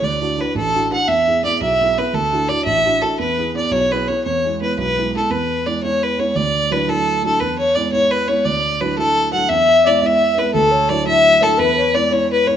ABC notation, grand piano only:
X:1
M:6/8
L:1/8
Q:3/8=114
K:Emix
V:1 name="Grand piano"
D,, [DEF] [DEF] A,,, [DEF] [DEF] | E,, [B,EG] [B,EG] B,,, [B,EG] [B,EG] | D,, [DEF] [DEF] A,,, [DEF] [DEF] | E,, [B,EG] [B,EG] B,,, [B,EG] [B,EG] |
E,, [G,B,E] [G,B,E] B,,, [G,B,E] [G,B,E] | E,,2 [G,B,E] [G,B,E]2 [G,B,E] | D,,2 [F,DE] [F,DE]2 [F,DE] | E,,2 [G,B,E] [G,B,E]2 [G,B,E] |
D,,2 [F,DE] [F,DE]2 [F,DE] | E,,2 [G,B,E] [G,B,E]2 [G,B,E] | D,,2 [F,DE] [F,DE]2 [F,DE] | E,,2 [G,B,E] [G,B,E]2 [G,B,E] |]